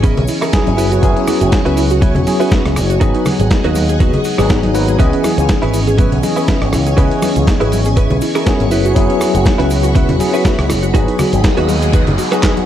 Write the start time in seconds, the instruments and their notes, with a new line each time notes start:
Already playing: picked electric bass G#1, tine electric piano E3 B3 C#4 G#4 D#5, string machine C#4 C#5 G#5 C#6
0.03 synth arpeggio sound B3, clean electric guitar C#4 E4 G#4 A#4, kick, closed hi-hat, cabasa
0.17 picked electric bass B1, synth arpeggio sound C#4, closed hi-hat, low conga
0.27 synth arpeggio sound E4, open hi-hat, cabasa
0.41 clean electric guitar C#4 E4 G#4 A#4, synth arpeggio sound G#4, cross-stick, cabasa
0.53 tine electric piano F#3 B3 C#4 E4 G#4, synth arpeggio sound B3, kick, snare, closed hi-hat, cabasa
0.67 picked electric bass G#1, synth arpeggio sound C#4, closed hi-hat, high conga
0.77 picked electric bass F#1, clean electric guitar C#4 E4 F#4 B4, synth arpeggio sound E4, string machine F#4, open hi-hat, cabasa
0.91 synth arpeggio sound F#4, closed hi-hat, cabasa
1.02 picked electric bass F#1, tine electric piano F#3 B3 C#4 E4 G#4, synth arpeggio sound B3, kick, closed hi-hat, cabasa
1.16 synth arpeggio sound C#4, closed hi-hat
1.27 synth arpeggio sound E4, cross-stick, open hi-hat, high conga, cabasa
1.41 picked electric bass F#1, synth arpeggio sound F#4, closed hi-hat, cabasa
1.52 synth arpeggio sound B3, kick, snare, closed hi-hat, cabasa
1.65 picked electric bass C#2, clean electric guitar C#4 E4 F#4 B4, synth arpeggio sound C#4, closed hi-hat
1.77 synth arpeggio sound E4, open hi-hat, cabasa
1.90 synth arpeggio sound F#4, closed hi-hat, cabasa
2.01 synth arpeggio sound B3, clean electric guitar C#4 E4 F#4 C#5, kick, closed hi-hat, high conga, cabasa
2.15 picked electric bass E1, synth arpeggio sound C#4, closed hi-hat, low conga
2.25 tine electric piano F#3 B3 C#4 E4 G#4, synth arpeggio sound E4, open hi-hat, high conga, cabasa
2.40 clean electric guitar C#4 E4 F#4 B4, synth arpeggio sound F#4, cabasa
2.51 synth arpeggio sound B3, kick, snare, closed hi-hat, cabasa
2.65 picked electric bass C#2, synth arpeggio sound C#4, cross-stick, closed hi-hat
2.76 picked electric bass F#1, synth arpeggio sound E4, cross-stick, open hi-hat, cabasa
2.90 synth arpeggio sound F#4, closed hi-hat, cabasa
3.00 picked electric bass G#1, tine electric piano F#3 B3 D#4 G#4, synth arpeggio sound B3, clean electric guitar D#4 F#4 G#4 B4, string machine G#4 D#5 F#5 G#5, kick, closed hi-hat, cabasa
3.15 synth arpeggio sound D#4, closed hi-hat
3.25 synth arpeggio sound F#4, cross-stick, open hi-hat, high conga, low conga, cabasa
3.40 picked electric bass G#1, synth arpeggio sound G#4, closed hi-hat, cabasa
3.51 synth arpeggio sound B3, kick, snare, closed hi-hat, cabasa
3.64 picked electric bass D#2, synth arpeggio sound D#4, clean electric guitar D#4 F#4 G#4 B4, closed hi-hat
3.75 synth arpeggio sound F#4, open hi-hat, high conga, cabasa
3.89 synth arpeggio sound G#4, closed hi-hat, cabasa
4.00 synth arpeggio sound B3, clean electric guitar D#4 F#4 G#4 B4, kick, closed hi-hat, cabasa
4.13 synth arpeggio sound D#4, closed hi-hat, low conga
4.24 synth arpeggio sound F#4, open hi-hat, cabasa
4.38 picked electric bass G#1, tine electric piano F#3 B3 D#4 G#4, clean electric guitar D#4 F#4 G#4 B4, synth arpeggio sound G#4, cross-stick, cabasa
4.49 synth arpeggio sound B3, kick, snare, closed hi-hat, cabasa
4.63 synth arpeggio sound D#4, closed hi-hat, high conga
4.74 tine electric piano F#3 A#3 B3 D#4 B4, synth arpeggio sound F#4, open hi-hat, cabasa
4.88 synth arpeggio sound G#4, closed hi-hat, cabasa
4.98 picked electric bass C#2, tine electric piano E3 B3 C#4 G#4 D#5, synth arpeggio sound B3, clean electric guitar C#4 E4 G#4 B4, string machine C#4 C#5 C#6, kick, closed hi-hat, cabasa
5.13 synth arpeggio sound C#4, closed hi-hat
5.24 synth arpeggio sound E4, cross-stick, open hi-hat, high conga, cabasa
5.38 picked electric bass C#2, synth arpeggio sound G#4, closed hi-hat, cabasa
5.49 synth arpeggio sound B3, kick, snare, closed hi-hat, cabasa
5.62 picked electric bass G#1, synth arpeggio sound C#4, clean electric guitar C#4 E4 G#4 B4, closed hi-hat
5.74 synth arpeggio sound E4, open hi-hat, cabasa
5.87 synth arpeggio sound G#4, closed hi-hat, cabasa
5.98 synth arpeggio sound B3, clean electric guitar C#4 E4 G#4 B4, kick, closed hi-hat, high conga, cabasa
6.12 picked electric bass B1, synth arpeggio sound C#4, closed hi-hat, low conga
6.22 tine electric piano E3 B3 C#4 G#4 D#5, synth arpeggio sound E4, open hi-hat, high conga, cabasa
6.36 clean electric guitar C#4 E4 G#4 B4, synth arpeggio sound G#4, cabasa
6.48 synth arpeggio sound B3, kick, snare, closed hi-hat, cabasa
6.62 picked electric bass G#1, synth arpeggio sound C#4, cross-stick, closed hi-hat
6.73 picked electric bass C#2, synth arpeggio sound E4, cross-stick, open hi-hat, cabasa
6.87 synth arpeggio sound G#4, closed hi-hat, cabasa
6.96 picked electric bass C#2, tine electric piano E3 B3 C#4 G#4 D#5, synth arpeggio sound B3, clean electric guitar C#4 E4 G#4 B4, kick, closed hi-hat, cabasa
7.11 synth arpeggio sound C#4, closed hi-hat
7.22 synth arpeggio sound E4, cross-stick, open hi-hat, high conga, cabasa
7.36 picked electric bass C#2, synth arpeggio sound G#4, closed hi-hat, cabasa
7.47 synth arpeggio sound B3, kick, snare, closed hi-hat, cabasa
7.60 picked electric bass G#1, clean electric guitar C#4 E4 G#4 B4, synth arpeggio sound C#4, closed hi-hat
7.72 synth arpeggio sound E4, open hi-hat, high conga, cabasa
7.85 synth arpeggio sound G#4, closed hi-hat, cabasa
7.96 synth arpeggio sound B3, clean electric guitar C#4 E4 G#4 B4, kick, closed hi-hat, cabasa
8.10 picked electric bass B1, synth arpeggio sound C#4, closed hi-hat, low conga
8.21 synth arpeggio sound E4, open hi-hat, cabasa
8.35 clean electric guitar C#4 E4 G#4 A#4, synth arpeggio sound G#4, cross-stick, cabasa
8.46 tine electric piano F#3 B3 C#4 E4 G#4, synth arpeggio sound B3, kick, snare, closed hi-hat, cabasa
8.60 picked electric bass G#1, synth arpeggio sound C#4, closed hi-hat, high conga
8.71 picked electric bass F#1, clean electric guitar C#4 E4 F#4 B4, synth arpeggio sound E4, string machine F#4 B5, open hi-hat, cabasa
8.85 synth arpeggio sound F#4, closed hi-hat, cabasa
8.94 picked electric bass F#1, tine electric piano F#3 B3 C#4 E4 G#4, synth arpeggio sound B3, kick, closed hi-hat, cabasa
9.10 synth arpeggio sound C#4, closed hi-hat
9.20 synth arpeggio sound E4, cross-stick, open hi-hat, high conga, cabasa
9.34 picked electric bass F#1, synth arpeggio sound F#4, closed hi-hat, cabasa
9.45 synth arpeggio sound B3, kick, snare, closed hi-hat, cabasa
9.58 picked electric bass C#2, synth arpeggio sound C#4, clean electric guitar C#4 E4 F#4 B4, closed hi-hat
9.70 synth arpeggio sound E4, open hi-hat, cabasa
9.83 synth arpeggio sound F#4, closed hi-hat, cabasa
9.95 synth arpeggio sound B3, clean electric guitar C#4 E4 F#4 B4, kick, closed hi-hat, high conga, cabasa
10.09 picked electric bass E1, synth arpeggio sound C#4, closed hi-hat, low conga
10.18 tine electric piano F#3 B3 C#4 E4 G#4, synth arpeggio sound E4, open hi-hat, high conga, cabasa
10.33 clean electric guitar C#4 E4 F#4 B4, synth arpeggio sound F#4, cabasa
10.44 synth arpeggio sound B3, kick, snare, closed hi-hat, cabasa
10.58 picked electric bass C#2, synth arpeggio sound C#4, cross-stick, closed hi-hat
10.69 picked electric bass F#1, synth arpeggio sound E4, cross-stick, open hi-hat, cabasa
10.83 synth arpeggio sound F#4, closed hi-hat, cabasa
10.93 picked electric bass G#1, tine electric piano F#3 B3 D#4 G#4, synth arpeggio sound B3, clean electric guitar D#4 F#4 G#4 B4, string machine G#4 D#5 F#5, kick, closed hi-hat, noise sweep, cabasa
11.08 synth arpeggio sound D#4, closed hi-hat
11.19 synth arpeggio sound F#4, cross-stick, open hi-hat, high conga, low conga, cabasa
11.33 picked electric bass G#1, synth arpeggio sound G#4, closed hi-hat, cabasa
11.44 synth arpeggio sound B3, kick, snare, closed hi-hat, cabasa
11.57 picked electric bass D#2, synth arpeggio sound D#4, clean electric guitar D#4 F#4 G#4 B4, closed hi-hat
11.68 synth arpeggio sound F#4, open hi-hat, high conga, cabasa
11.82 synth arpeggio sound G#4, closed hi-hat, cabasa
11.93 synth arpeggio sound B3, clean electric guitar D#4 F#4 G#4 B4, kick, closed hi-hat, cabasa
12.07 picked electric bass F#1, synth arpeggio sound D#4, closed hi-hat, low conga
12.18 synth arpeggio sound F#4, open hi-hat, cabasa
12.31 tine electric piano F#3 B3 D#4 G#4, clean electric guitar D#4 F#4 G#4 B4, synth arpeggio sound F#4, cross-stick, closed hi-hat, cabasa
12.43 synth arpeggio sound D#4, kick, snare, clap, closed hi-hat, cabasa
12.57 synth arpeggio sound F#4, closed hi-hat, high conga